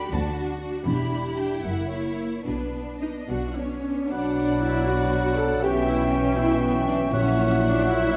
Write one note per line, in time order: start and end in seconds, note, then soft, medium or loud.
0.00 0.11 D4 soft
0.00 0.11 F#4 medium
0.00 0.12 G4 medium
0.00 0.12 B5 medium
0.12 0.75 D2 medium
0.12 0.36 D4 medium
0.12 0.36 F#4 medium
0.12 0.87 F#4 medium
0.12 0.37 A5 medium
0.37 0.60 D4 medium
0.37 0.60 F#4 soft
0.61 0.85 D4 soft
0.61 0.86 F#4 medium
0.86 1.52 E1 medium
0.86 1.52 E2 medium
0.86 1.11 D4 medium
0.86 2.43 E4 medium
0.86 1.11 G4 medium
0.86 1.34 B5 medium
1.12 1.37 D4 soft
1.12 1.37 G4 soft
1.37 1.63 D4 soft
1.37 1.63 G4 medium
1.37 1.63 G5 medium
1.64 2.34 F#1 medium
1.64 2.34 F#2 medium
1.64 1.90 A#3 soft
1.64 1.90 E4 soft
1.64 1.90 F#5 medium
1.91 2.17 A#3 soft
1.91 2.17 E4 soft
1.91 2.45 C#5 medium
2.18 2.45 A#3 soft
2.18 2.45 E4 soft
2.46 3.17 B1 medium
2.46 3.17 B2 soft
2.46 2.73 B3 soft
2.46 3.68 D4 soft
2.46 2.73 D4 soft
2.46 3.00 B4 soft
2.74 3.00 B3 soft
2.74 3.00 D4 soft
3.01 3.28 B3 soft
3.01 3.28 D4 soft
3.01 3.10 D#4 medium
3.01 3.27 D#5 soft
3.29 4.00 B1 medium
3.29 4.00 B2 soft
3.29 3.56 B3 soft
3.29 3.55 D4 soft
3.29 3.56 F#4 medium
3.29 3.57 F#5 medium
3.57 3.84 B3 soft
3.57 4.11 C#4 medium
3.57 3.84 D4 soft
3.57 4.11 C#5 soft
3.85 4.11 B3 soft
3.85 4.10 D4 soft
4.10 5.59 B1 medium
4.10 5.59 B2 soft
4.10 4.84 F#3 medium
4.10 5.65 F#3 soft
4.10 4.62 D4 medium
4.10 4.84 D4 medium
4.10 4.84 D5 soft
4.10 4.63 D5 soft
4.10 5.60 D5 medium
4.10 5.59 F#5 medium
4.10 4.84 F#5 soft
4.10 5.59 B5 soft
4.63 4.87 E4 medium
4.63 4.88 E5 soft
4.87 5.62 F#3 soft
4.87 5.61 D4 soft
4.87 5.38 F#4 medium
4.87 5.61 D5 soft
4.87 5.62 F#5 soft
4.87 5.37 F#5 medium
5.37 5.63 A4 medium
5.37 5.45 A5 medium
5.62 7.10 B1 soft
5.62 7.11 B2 medium
5.62 7.12 E3 soft
5.62 6.37 E3 medium
5.62 6.38 C#4 medium
5.62 5.88 G4 medium
5.62 6.37 E5 soft
5.62 8.17 E5 medium
5.62 7.10 G5 medium
5.62 6.37 G5 medium
5.62 5.88 G5 soft
5.62 8.17 C#6 medium
5.88 6.13 E4 medium
5.88 6.13 E5 medium
6.12 6.37 C#4 medium
6.12 6.38 C#5 medium
6.37 7.13 E3 medium
6.37 7.13 C#4 soft
6.37 6.63 E4 medium
6.37 6.63 E5 medium
6.37 7.11 E5 medium
6.37 7.12 G5 medium
6.61 6.88 B3 medium
6.61 6.87 B4 medium
6.88 6.96 D4 medium
6.88 6.96 D5 medium
7.12 8.17 A#1 medium
7.12 7.84 A#2 medium
7.12 8.17 A#2 medium
7.12 8.17 F#3 medium
7.12 7.87 F#3 medium
7.12 7.62 C#4 medium
7.12 7.88 E4 medium
7.12 7.62 C#5 medium
7.12 7.86 E5 medium
7.12 7.86 F#5 medium
7.12 8.17 F#5 medium
7.62 7.88 D4 medium
7.62 7.87 D5 medium
7.87 8.17 F#3 medium
7.87 8.17 E4 medium
7.87 8.17 E5 medium
7.87 8.17 F#5 medium